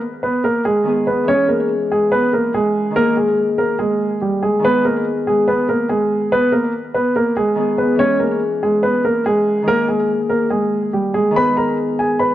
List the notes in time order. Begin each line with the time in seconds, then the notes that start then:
Already playing: D#3 G#3 B3 G#4
0.23 B3 B4
0.44 A#3 A#4
0.65 G#3 G#4
0.84 D#3 G#3 B3
0.89 G#4
1.07 B3 B4
1.24 E3 G#3
1.28 C#4 C#5
1.33 G#4
1.48 A#3 A#4
1.92 G#3 G#4
2.12 B3 B4
2.33 A#3 A#4
2.54 G#3 G#4
2.91 D#3 G#3
2.96 A#3 A#4
3.00 G#4
3.17 G#3 G#4
3.58 A#3 A#4
3.79 G#3 G#4
4.22 G3 G4
4.43 G#3 G#4
4.59 D#3 G#3
4.65 B3 B4
4.69 G#4
4.85 A#3 A#4
5.27 G#3 G#4
5.48 B3 B4
5.69 A#3 A#4
5.89 G#3 G#4
6.32 B3 B4
6.52 A#3 A#4
6.94 B3 B4
7.16 A#3 A#4
7.37 G#3 G#4
7.55 D#3 G#3 B3
7.60 G#4
7.78 B3 B4
7.95 E3 G#3 C#5
8.00 C#4
8.05 G#4
8.19 A#3 A#4
8.63 G#3 G#4
8.83 B3 B4
9.05 A#3 A#4
9.26 G#3 G#4
9.62 D#3 G#3
9.67 A#3 A#4
9.72 G#4
9.88 G#3 G#4
10.30 A#3 A#4
10.50 G#3 G#4
10.93 G3 G4
11.14 G#3 G#4
11.31 D#3 G#3
11.36 B3 B4 B5
11.40 G#4
11.57 A#4 A#5
11.99 G#4 G#5
12.19 B4 B5